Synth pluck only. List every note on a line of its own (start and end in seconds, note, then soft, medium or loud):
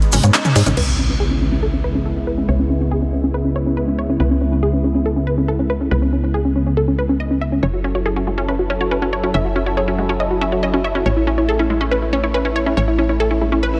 0.77 0.85 B4 loud
0.88 0.95 C#4 medium
0.99 1.06 C#4 medium
1.09 1.17 C#4 medium
1.20 1.28 G#4 medium
1.31 1.38 C#4 medium
1.41 1.49 C#4 medium
1.52 1.60 C#4 medium
1.63 1.70 A4 medium
1.73 1.81 C#4 medium
1.84 1.92 B4 medium
1.95 2.03 C#4 medium
2.06 2.13 A4 medium
2.16 2.24 C#4 medium
2.27 2.35 B4 medium
2.38 2.45 C#4 medium
2.49 2.56 C#5 medium
2.59 2.67 C#4 medium
2.70 2.78 C#4 medium
2.81 2.88 C#4 medium
2.91 2.99 G#4 medium
3.02 3.10 C#4 medium
3.13 3.20 C#4 medium
3.24 3.31 C#4 medium
3.34 3.42 B4 medium
3.45 3.53 C#4 medium
3.56 3.63 C#5 medium
3.66 3.74 C#4 medium
3.77 3.85 B4 medium
3.88 3.95 C#4 medium
3.99 4.06 C#5 medium
4.09 4.17 C#4 medium
4.20 4.28 B4 loud
4.31 4.38 C#4 medium
4.41 4.49 C#4 medium
4.52 4.60 C#4 medium
4.63 4.70 G#4 medium
4.73 4.81 C#4 medium
4.84 4.92 C#4 medium
4.95 5.03 C#4 medium
5.06 5.13 A4 medium
5.16 5.24 C#4 medium
5.27 5.35 B4 medium
5.38 5.45 C#4 medium
5.48 5.56 A4 medium
5.59 5.67 C#4 medium
5.70 5.78 B4 medium
5.81 5.88 C#4 medium
5.91 5.99 B4 loud
6.02 6.10 C#4 medium
6.13 6.20 C#4 medium
6.23 6.31 C#4 medium
6.34 6.42 G#4 medium
6.45 6.53 C#4 medium
6.56 6.63 C#4 medium
6.66 6.74 C#4 medium
6.77 6.85 A4 medium
6.88 6.95 C#4 medium
6.99 7.06 B4 medium
7.09 7.17 C#4 medium
7.20 7.28 D#5 medium
7.31 7.38 C#4 medium
7.41 7.49 E5 medium
7.52 7.60 C#4 medium
7.63 7.70 C#5 loud
7.74 7.81 F#4 medium
7.84 7.92 F#4 medium
7.95 8.03 F#4 medium
8.06 8.13 A4 medium
8.16 8.24 F#4 medium
8.27 8.35 F#4 medium
8.38 8.45 F#4 medium
8.48 8.56 B4 medium
8.59 8.67 F#4 medium
8.70 8.78 C#5 medium
8.81 8.88 F#4 medium
8.91 8.99 B4 medium
9.02 9.10 F#4 medium
9.13 9.20 C#5 medium
9.23 9.31 F#4 medium
9.34 9.42 E5 loud
9.45 9.53 F#4 medium
9.56 9.63 F#4 medium
9.66 9.74 F#4 medium
9.77 9.85 C#5 medium
9.88 9.95 F#4 medium
9.99 10.06 F#4 medium
10.09 10.17 F#4 medium
10.20 10.28 D#5 medium
10.31 10.38 F#4 medium
10.41 10.49 E5 medium
10.52 10.60 F#4 medium
10.63 10.70 D#5 medium
10.74 10.81 F#4 medium
10.84 10.92 E5 medium
10.95 11.03 F#4 medium
11.06 11.13 C#5 loud
11.16 11.24 E4 medium
11.27 11.35 E4 medium
11.38 11.45 E4 medium
11.49 11.56 A4 medium
11.59 11.67 E4 medium
11.70 11.78 E4 medium
11.81 11.88 E4 medium
11.91 11.99 B4 medium
12.02 12.10 E4 medium
12.13 12.20 C#5 medium
12.24 12.31 E4 medium
12.34 12.42 B4 medium
12.45 12.53 E4 medium
12.56 12.63 C#5 medium
12.66 12.74 E4 medium
12.77 12.85 C#5 loud
12.88 12.95 E4 medium
12.99 13.06 E4 medium
13.09 13.17 E4 medium
13.20 13.28 A4 medium
13.31 13.38 E4 medium
13.41 13.49 E4 medium
13.52 13.60 E4 medium
13.63 13.70 B4 medium
13.74 13.80 E4 medium